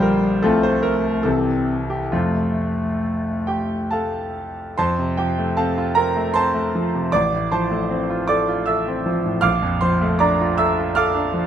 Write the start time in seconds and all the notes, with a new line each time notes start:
Already playing: A#1 D3 F3 G3 F4 G4 C5
0.02 A#4
0.42 C2 C3 F3 A3 C4 F4 A4
0.63 C5
0.83 A#4
1.23 C2 C3 E3 G3 A4
1.27 C4
1.90 G4
2.12 F2 C3 F3 A3 C4 F4
3.47 G4 G5
3.91 A4 F5 A5
4.78 F2 C5 A5 C6
4.99 C3
5.17 F3 G4 G5
5.39 A3
5.57 C4 A4 F5 A5
5.78 F4
5.95 C4 A#4 A#5
6.17 A3
6.34 C4 C5 A5 C6
6.54 A3
6.75 F3
6.95 C3
7.12 A1 D5 D6
7.33 A2
7.51 F3 C5 A5 C6
7.71 A3
7.90 C4
8.10 F4
8.28 A4 D5 D6
8.49 F4
8.66 A4 E5 E6
8.88 C4
9.06 F3
9.25 A2
9.41 A#1 F5 D6 F6
9.62 F2
9.81 F3 C5 C6
10.01 A3
10.19 D4 D5 A#5 D6
10.41 F4
10.58 A4 E5 E6
10.78 F4
10.95 A4 F5 D6 F6
11.14 D4
11.33 F3